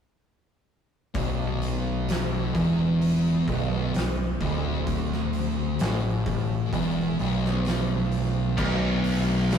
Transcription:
1.14 picked electric bass B0, distorted electric guitar B1, kick, open hi-hat
1.62 open hi-hat
2.09 snare, open hi-hat
2.55 picked electric bass E1, distorted electric guitar E2, kick, open hi-hat
3.02 open hi-hat
3.47 picked electric bass B0, distorted electric guitar B1, kick, open hi-hat
3.94 picked electric bass B0, distorted electric guitar B1, snare, open hi-hat
4.41 picked electric bass D1, distorted electric guitar D2, kick, open hi-hat
4.87 kick, open hi-hat
5.12 snare
5.33 open hi-hat
5.79 picked electric bass A1, distorted electric guitar A2, snare, open hi-hat
6.26 picked electric bass A1, distorted electric guitar A2, kick, open hi-hat
6.73 picked electric bass E1, distorted electric guitar E2, kick, open hi-hat
7.19 picked electric bass B0, distorted electric guitar B1, open hi-hat
7.45 snare
7.65 snare, open hi-hat
8.12 open hi-hat
8.58 picked electric bass B0, distorted electric guitar B1, string machine F#3 B3 D4, kick, crash
9.04 open hi-hat
9.51 snare, open hi-hat

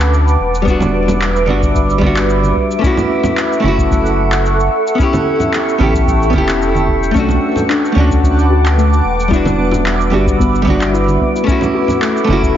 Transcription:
Already playing: sub bass D2, hollow-body jazz guitar A3 C#4 D4 F#4, ambient pad B4 F#5 A5 D6
0.00 clap, cabasa
0.14 cabasa
0.28 cabasa
0.40 sub bass E1, ambient pad E5
0.55 cabasa
0.62 hollow-body jazz guitar G3 B3
0.67 hollow-body jazz guitar D4 F#4, kick, cabasa
0.80 high conga, low conga, cabasa
1.08 low conga, cabasa
1.22 clap, cabasa
1.36 cabasa
1.46 sub bass G1, hollow-body jazz guitar G3 B3 D4, high conga
1.50 hollow-body jazz guitar F#4
1.62 kick, cabasa
1.75 kick, cabasa
1.90 cabasa
1.98 hollow-body jazz guitar G3 B3, high conga
2.02 hollow-body jazz guitar D4, kick
2.07 hollow-body jazz guitar F#4
2.16 clap, cabasa
2.30 cabasa
2.44 high conga, cabasa
2.56 kick
2.71 cabasa
2.79 hollow-body jazz guitar A3 C#4
2.83 hollow-body jazz guitar E4 F#4, ambient pad A4 F#5 C#6, kick, cabasa
2.97 low conga, cabasa
3.24 low conga, cabasa
3.37 clap, cabasa
3.53 cabasa
3.60 sub bass F#1, hollow-body jazz guitar A3 C#4
3.64 hollow-body jazz guitar E4 F#4, high conga
3.78 kick, cabasa
3.91 kick, cabasa
4.06 cabasa
4.32 clap, cabasa
4.46 cabasa
4.60 cabasa
4.87 cabasa
4.95 hollow-body jazz guitar B3 C#4, ambient pad G5
4.99 hollow-body jazz guitar E4 G4, kick, cabasa
5.13 high conga, low conga, cabasa
5.40 low conga, cabasa
5.53 clap, cabasa
5.69 cabasa
5.78 sub bass A1, hollow-body jazz guitar B3 C#4 E4, high conga
5.83 hollow-body jazz guitar G4
5.94 kick, cabasa
6.07 kick, cabasa
6.23 cabasa
6.30 hollow-body jazz guitar B3 C#4
6.34 sub bass E1, hollow-body jazz guitar E4 G4, kick, high conga
6.49 clap, cabasa
6.62 cabasa
6.75 high conga, cabasa
6.88 kick
7.03 cabasa
7.11 hollow-body jazz guitar A3 C#4, synth pluck A3
7.15 sub bass B1, hollow-body jazz guitar D4, ambient pad B4 F#5 A5 D6, kick, cabasa
7.19 hollow-body jazz guitar F#4
7.29 low conga, cabasa
7.56 low conga, cabasa
7.69 synth pluck D4, clap, cabasa
7.85 cabasa
7.92 sub bass D2, hollow-body jazz guitar A3 C#4
7.96 synth pluck A3, hollow-body jazz guitar D4 F#4, high conga
8.10 kick, cabasa
8.23 kick, cabasa
8.39 cabasa
8.50 synth pluck F#4
8.66 clap, cabasa
8.77 synth pluck A3, cabasa
8.93 cabasa
9.04 sub bass E1, ambient pad E5
9.20 cabasa
9.28 hollow-body jazz guitar G3 B3, synth pluck E4, kick
9.33 hollow-body jazz guitar D4 F#4, cabasa
9.45 high conga, low conga, cabasa
9.58 synth pluck B3
9.71 low conga, cabasa
9.86 clap, cabasa
10.01 cabasa
10.10 sub bass G1, hollow-body jazz guitar G3 B3 D4 F#4, synth pluck G4, high conga
10.27 kick, cabasa
10.40 synth pluck B3, kick, cabasa
10.55 cabasa
10.62 hollow-body jazz guitar G3 B3
10.67 hollow-body jazz guitar D4 F#4, kick, high conga
10.81 clap, cabasa
10.93 synth pluck E4, cabasa
11.08 high conga, cabasa
11.21 synth pluck B3, kick
11.36 cabasa
11.44 hollow-body jazz guitar A3 C#4, ambient pad A4 F#5 C#6
11.48 hollow-body jazz guitar E4 F#4, kick, cabasa
11.61 low conga, cabasa
11.75 synth pluck F#4
11.88 low conga, cabasa
12.01 synth pluck A3, clap, cabasa
12.17 cabasa
12.24 hollow-body jazz guitar A3 C#4, high conga
12.29 sub bass F#1, hollow-body jazz guitar E4 F#4
12.43 kick, cabasa

